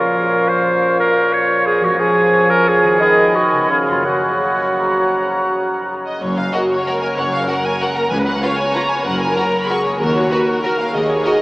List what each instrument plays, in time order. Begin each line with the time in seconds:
Already playing: harp A#2 F3 C#4 C#5, bassoon A#2, clarinet A#4, flute F5
0.00 oboe C#5
0.49 clarinet C5
1.00 clarinet A#4
1.33 clarinet C#5
1.66 clarinet G#4
1.81 harp F3, clarinet F#4
1.86 harp G#3
1.90 harp C#4
1.95 bassoon F3, harp C#5
1.99 clarinet G#4, oboe C#5, flute G#5
2.50 clarinet A#4
2.68 clarinet G#4
2.83 harp D#3
2.87 harp B3
2.92 harp F#4
2.96 harp D#5
3.00 bassoon D#3, clarinet G#4, oboe D#5, flute B5
3.35 clarinet F#4
3.53 harp C#3
3.57 harp B3
3.62 harp F4
3.66 bassoon C#3, harp C#5
3.71 clarinet G#4, oboe F5
3.87 harp F#2, clarinet F4
3.91 harp A#3
3.96 harp F#4
4.01 harp C#5
4.05 bassoon F#3, clarinet F#4, oboe F#5
4.79 flute A#5
6.05 violin section D#5
6.21 double bass section F#1, cello section F#2, harp F#2, violin section C#5
6.36 harp C#3, violin section F5
6.53 viola section F#4, harp F#4, violin section F#4 A#4 D#5
6.70 harp A#3, violin section C#5
6.86 harp G#3, violin section F#4 A#4, viola section A#4
7.01 harp A#3, violin section G#5
7.17 double bass section F#1, harp F#2, cello section F#2, viola section C#5, violin section F#5
7.32 harp C#3, violin section F5
7.47 harp F#4, violin section F#4 A#4 F#5, viola section A#4
7.65 harp A#3, violin section G#5
7.81 harp G#3, violin section F#4 A#4 F#5
7.97 harp A#3, violin section A#5
8.11 double bass section C#2, cello section C#2, timpani C#3, harp C#3, viola section B4, violin section G#5
8.26 harp G#3, violin section F#5
8.42 harp F4, violin section F4 B4 F5, viola section C#5
8.59 harp B3, violin section G#5
8.74 harp A#3, violin section F4 B4 A#5
8.90 harp B3, violin section G#5
9.05 double bass section F#1, harp F#2, cello section F#2, viola section A#4, violin section F#5
9.20 harp C#3, violin section G#5
9.36 violin section F#4 A#4 A#5, harp F#4
9.54 harp A#3
9.62 violin section B5
9.69 harp G#3, violin section F#4 A#4 C#6, viola section G#4
9.85 harp A#3, violin section C#5
10.00 double bass section D#2, cello section D#2, harp D#3, viola section F#4, violin section A#4
10.15 harp D#4, violin section C#5
10.31 harp F#4, violin section F#4 A#4 B4
10.47 harp A#3, violin section A#4
10.63 harp G#3, violin section F#4 A#4, viola section A#4
10.79 harp A#3, violin section F5
10.94 cello section D#2, double bass section D#2, harp D#3, viola section G#4, violin section D#5
11.09 harp D#4, violin section C#5
11.25 harp F#4, violin section F#4 A#4 D#5